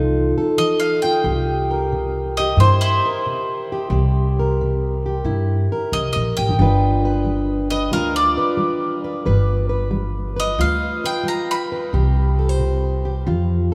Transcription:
Already playing: C2 F3 D#4 F4 A4
0.38 A4
0.58 F3 D#5
0.80 F5
1.02 F4 G5
1.24 C2 C3 G4
1.71 A#4
1.92 C3
2.37 G4 D#5
2.57 G2 C3 C5
2.61 E4
2.81 E4 C5
3.06 A#4
3.26 C3
3.72 G4
3.90 C2 C3 G4
4.39 A#4
4.61 C3
5.06 G4
5.24 G2 C3 E4
5.72 A#4
5.92 C2 C3 D#5
6.13 A#1 D#5
6.37 A1 G4 G5
6.49 G1
6.59 G1 G3 D4 F4 B4
7.05 B4
7.24 G3
7.70 B4 D#5
7.92 D2 G3 F4 A#4
8.16 D5
8.37 B4
8.57 G3
9.04 B4
9.26 G1 G3 B4
9.69 B4
9.91 G3
10.36 B4 D#5
10.58 D2 G3 F4 F5
11.04 B4 G5
11.23 G3
11.28 A#5
11.51 B5
11.72 B4
11.93 C2 C3 G4
12.39 A4
12.49 C5
12.59 C3
13.05 G4
13.27 F2 F3 F4

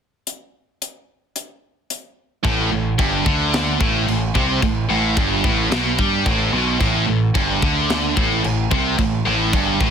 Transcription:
0.27 closed hi-hat
0.82 closed hi-hat
1.36 closed hi-hat
1.90 closed hi-hat
2.44 A1 A2, kick, china
2.71 A1 A2
2.99 G1 G2, kick, china
3.26 D2 D3, kick
3.53 snare, china
3.80 A1 A2, kick
4.07 A1 A2, china
4.34 C2 C3, kick
4.62 A1 A2, kick, china
4.89 A1 A2
5.16 G1 G2, kick, china
5.43 A1 A2, kick
5.71 B1 B2, snare, china
5.98 G2 G3, kick
6.25 A1 A2, kick, china
6.52 B1 B2
6.80 A1 A2, kick, china
7.08 A1 A2
7.35 G1 G2, kick, china
7.62 D2 D3, kick
7.90 snare, china
8.16 A1 A2, kick
8.44 A1 A2, china
8.71 C2 C3, kick
8.98 A1 A2, kick, china
9.26 A1 A2
9.53 G1 G2, kick, china
9.81 A1 A2, kick

